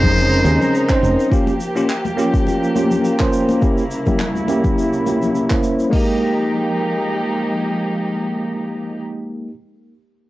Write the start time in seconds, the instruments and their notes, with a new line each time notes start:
Already playing: fretless electric bass F1, string section C#3 G#3 D#4 A#4, tine electric piano C4 C#4 D#4 G#4, muted trumpet C5
0.03 kick, muted conga, low conga, shaker
0.17 shaker
0.32 shaker
0.44 fretless electric bass D#2, tine electric piano C4 C#4 D#4 G#4, muted conga, high conga, shaker
0.60 low conga, shaker
0.75 shaker
0.88 tine electric piano C4 C#4 D#4 C5, kick, clap, shaker
1.03 fretless electric bass F1, muted conga, shaker
1.20 shaker
1.30 string section F3 A#3 G4, tine electric piano A#3 C#4 F4 G4, kick, shaker
1.47 muted conga, shaker
1.60 shaker
1.75 tine electric piano A#3 C#4 F4 G4, shaker
1.89 clap, shaker
2.05 muted conga, high conga, shaker
2.17 tine electric piano A#3 C#4 F4 G4, shaker
2.34 kick, shaker
2.47 muted conga, shaker
2.63 shaker
2.75 tine electric piano A#3 C#4 F4 G4, high conga, shaker
2.91 low conga, shaker
3.04 muted conga, shaker
3.19 tine electric piano A#3 C#4 F4 C5, kick, clap, shaker
3.33 shaker
3.49 muted conga, shaker
3.61 string section C2 C#3 E4, tine electric piano A#3 C#4 E4 G4, kick, shaker
3.78 shaker
3.91 shaker
4.06 tine electric piano A#3 C#4 E4 G4, kick, muted conga, low conga, shaker
4.19 clap, shaker
4.35 high conga, shaker
4.48 tine electric piano A#3 C#4 E4 G4, muted conga, shaker
4.64 kick, low conga, shaker
4.78 shaker
4.93 shaker
5.05 tine electric piano A#3 C#4 E4 G4, muted conga, high conga, shaker
5.22 low conga, shaker
5.35 shaker
5.50 tine electric piano A#3 C#4 E4 C5, kick, clap, muted conga, high conga, shaker
5.63 shaker
5.79 shaker
5.89 string section F3 G#3 A#3 D#4 G4, tine electric piano G#3 A#3 D#4, kick, crash
5.96 tine electric piano G4